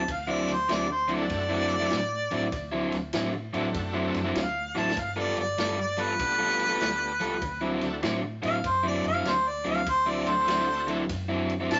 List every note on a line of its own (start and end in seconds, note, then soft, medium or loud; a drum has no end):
0.08 0.44 D2 medium
0.08 0.33 F5 medium
0.08 kick loud
0.08 ride loud
0.27 0.52 D3 medium
0.27 0.51 F#3 medium
0.27 0.51 C4 medium
0.27 0.51 E4 loud
0.32 0.54 D5 medium
0.48 0.67 D2 loud
0.48 snare soft
0.48 ride medium
0.53 0.74 C5 medium
0.69 1.26 D2 loud
0.69 0.89 D3 medium
0.69 0.87 F#3 loud
0.69 0.87 C4 medium
0.69 0.87 E4 loud
0.69 snare loud
0.69 ride medium
0.73 0.91 D5 medium
0.88 1.10 C5 medium
0.88 muted overdriven electric guitar stroke medium
1.08 1.22 D3 medium
1.08 1.23 F#3 medium
1.08 1.87 A3 medium
1.08 1.23 C4 medium
1.08 1.87 C4 medium
1.08 1.87 D4 medium
1.08 1.23 E4 medium
1.08 1.88 E4 medium
1.08 1.88 F#4 medium
1.08 ride medium
1.13 2.91 D5 loud
1.29 1.88 F#2 medium
1.29 kick loud
1.29 snare soft
1.29 ride medium
1.50 1.74 D3 medium
1.50 1.74 F#3 medium
1.50 1.73 C4 medium
1.50 1.73 E4 loud
1.70 ride medium
1.80 1.98 D3 medium
1.80 1.98 F#3 loud
1.80 1.97 C4 medium
1.80 1.97 E4 loud
1.90 2.28 A2 medium
1.90 snare loud
1.90 ride medium
2.31 2.51 A2 medium
2.31 2.45 D3 medium
2.31 2.45 F#3 medium
2.31 2.45 C4 medium
2.31 2.46 E4 medium
2.31 ride medium
2.52 2.89 D2 loud
2.52 kick loud
2.52 ride medium
2.72 2.96 D3 medium
2.72 2.96 F#3 medium
2.72 2.96 C4 loud
2.72 2.95 E4 loud
2.92 3.12 D2 medium
2.92 snare soft
2.92 ride medium
3.13 3.50 A2 loud
3.13 3.34 D3 medium
3.13 3.34 F#3 medium
3.13 3.33 C4 medium
3.13 3.33 E4 medium
3.13 snare loud
3.13 ride medium
3.34 muted overdriven electric guitar stroke medium
3.53 3.73 A2 medium
3.53 3.67 D3 medium
3.53 3.67 F#3 medium
3.53 4.32 A3 medium
3.53 4.32 C4 medium
3.53 3.68 C4 medium
3.53 4.32 D4 medium
3.53 4.32 E4 medium
3.53 3.68 E4 medium
3.53 4.32 F#4 medium
3.53 ride medium
3.74 4.11 F#2 medium
3.74 kick loud
3.74 ride medium
3.94 4.18 D3 medium
3.94 4.18 F#3 medium
3.94 4.18 C4 medium
3.94 4.17 E4 medium
4.14 4.34 F#2 medium
4.14 snare soft
4.14 ride medium
4.25 4.42 D3 medium
4.25 4.42 F#3 medium
4.25 4.42 C4 medium
4.25 4.42 E4 loud
4.35 4.72 D2 medium
4.35 4.77 F5 loud
4.35 kick medium
4.35 snare loud
4.35 ride medium
4.75 4.95 A1 medium
4.75 4.89 D3 medium
4.75 4.89 F#3 medium
4.75 4.90 C4 medium
4.75 4.90 E4 loud
4.75 4.97 A5 medium
4.75 snare medium
4.90 snare medium
4.97 5.33 G1 medium
4.97 5.21 F5 medium
4.97 kick loud
4.97 ride medium
5.16 5.40 G3 medium
5.16 5.40 B3 medium
5.16 5.40 F4 medium
5.16 5.40 A4 medium
5.16 5.39 D5 medium
5.37 5.57 G1 medium
5.37 5.59 D5 medium
5.37 ride medium
5.58 6.16 G1 medium
5.58 5.78 G3 medium
5.58 5.78 B3 medium
5.58 5.77 F4 medium
5.58 5.77 A4 medium
5.58 5.79 D5 medium
5.58 snare loud
5.58 ride medium
5.78 6.03 D5 medium
5.78 muted overdriven electric guitar stroke medium
5.97 6.12 G3 medium
5.97 6.12 B3 medium
5.97 6.12 F4 medium
5.97 6.12 A4 loud
5.97 ride medium
6.01 7.80 B4 loud
6.19 6.77 B1 medium
6.19 7.13 A3 medium
6.19 7.13 B3 medium
6.19 7.13 D4 medium
6.19 7.13 F4 medium
6.19 7.13 G4 medium
6.19 kick loud
6.19 snare soft
6.19 ride medium
6.39 6.63 G3 medium
6.39 6.63 B3 medium
6.39 6.62 F4 loud
6.39 6.62 A4 loud
6.59 snare soft
6.59 ride medium
6.69 6.87 G3 medium
6.69 6.87 B3 medium
6.69 6.87 F4 medium
6.69 6.86 A4 loud
6.81 7.17 D2 medium
6.81 snare loud
6.81 ride medium
7.20 7.40 C#2 medium
7.20 7.34 G3 medium
7.20 7.34 B3 medium
7.20 7.34 F4 loud
7.20 7.35 A4 loud
7.20 snare soft
7.20 ride medium
7.42 7.78 D2 medium
7.42 kick loud
7.42 ride medium
7.61 7.85 D3 medium
7.61 7.85 F#3 medium
7.61 7.85 C4 medium
7.61 7.85 E4 medium
7.81 8.02 D2 medium
7.81 8.01 A3 medium
7.81 8.01 C4 medium
7.81 8.01 D4 medium
7.81 8.01 E4 medium
7.81 8.01 F#4 medium
7.81 snare soft
7.81 ride medium
8.03 8.39 A2 loud
8.03 8.23 D3 loud
8.03 8.22 F#3 medium
8.03 8.22 C4 loud
8.03 8.21 E4 loud
8.03 snare loud
8.03 ride medium
8.22 muted overdriven electric guitar stroke medium
8.42 8.63 A2 medium
8.42 8.56 D3 medium
8.42 8.57 F#3 medium
8.42 8.57 C4 medium
8.42 8.57 E4 medium
8.42 8.68 F5 loud
8.42 ride medium
8.64 9.00 F#2 medium
8.64 8.85 C5 loud
8.64 kick loud
8.64 ride medium
8.83 9.08 D3 medium
8.83 9.07 F#3 medium
8.83 9.07 C4 medium
8.83 9.07 E4 loud
8.87 9.06 D5 medium
9.04 9.24 F#2 medium
9.04 9.30 F5 loud
9.04 ride medium
9.14 9.32 D3 medium
9.14 9.32 F#3 medium
9.14 9.32 C4 medium
9.14 9.31 E4 loud
9.25 9.62 D2 medium
9.25 9.50 C5 loud
9.25 snare loud
9.25 ride medium
9.48 9.67 D5 medium
9.64 9.85 D2 medium
9.64 9.79 D3 medium
9.64 9.79 F#3 loud
9.64 9.79 C4 medium
9.64 9.80 E4 loud
9.64 ride medium
9.69 9.88 F5 loud
9.86 10.23 D2 medium
9.86 10.11 C5 loud
9.86 kick loud
9.86 ride loud
10.06 10.30 D3 medium
10.06 10.30 F#3 medium
10.06 10.30 C4 loud
10.06 10.30 E4 loud
10.06 10.29 D5 medium
10.26 10.46 D2 loud
10.26 11.05 A3 medium
10.26 11.05 C4 medium
10.26 11.05 D4 medium
10.26 11.05 E4 medium
10.26 11.05 F#4 loud
10.26 10.87 C5 loud
10.26 ride medium
10.47 11.06 D2 loud
10.47 10.68 D3 loud
10.47 10.67 F#3 medium
10.47 10.67 C4 loud
10.47 10.66 E4 loud
10.47 snare loud
10.47 ride medium
10.67 muted overdriven electric guitar stroke medium
10.87 11.01 D3 medium
10.87 11.02 F#3 medium
10.87 11.02 C4 medium
10.87 11.02 E4 medium
10.87 ride medium
11.09 11.67 F#2 medium
11.09 kick loud
11.09 snare soft
11.09 ride medium
11.29 11.53 D3 medium
11.29 11.52 F#3 medium
11.29 11.52 C4 medium
11.29 11.52 E4 loud
11.50 ride medium
11.60 11.77 D3 medium
11.60 11.77 F#3 medium
11.60 11.77 C4 loud
11.60 11.77 E4 loud
11.71 11.80 A2 medium
11.71 11.80 A5 loud
11.71 snare loud
11.71 ride medium